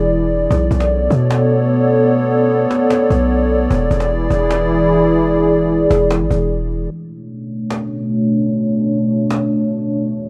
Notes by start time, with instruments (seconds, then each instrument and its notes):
Already playing: 808-style bass E1, analog synth pad E3 E4 G#4 D5
0.31 cajon slap
0.37 cajon slap
0.44 cajon slap
0.51 808-style bass B1, analog synth pad B3 A4 C#5, cajon bass
0.71 808-style bass B1, cajon bass
0.80 cajon slap
0.91 cajon slap
1.10 808-style bass B2, cajon bass
1.31 cajon slap
1.91 cajon slap
2.11 cajon slap
2.31 cajon slap
2.51 cajon slap
2.71 cajon slap
2.90 cajon slap
3.10 808-style bass B1, cajon bass
3.51 cajon slap
3.71 808-style bass E1, analog synth pad E3 E4 G#4 D5, cajon bass
3.91 808-style bass E1, cajon bass
4.00 cajon slap
4.11 cajon slap
4.30 808-style bass E1, cajon bass
4.51 cajon slap
5.11 cajon slap
5.31 cajon slap
5.51 cajon slap
5.71 cajon slap
5.90 808-style bass E1, cajon bass, cajon slap
6.11 cajon slap
6.21 808-style bass G#1
6.31 808-style bass E1, cajon bass
6.71 cajon slap
6.77 cajon slap
6.84 cajon slap
6.91 analog synth pad B2 A3 D4 C#5
7.70 cajon slap
9.30 cajon slap
10.11 analog synth pad E2 E3 G#4 D5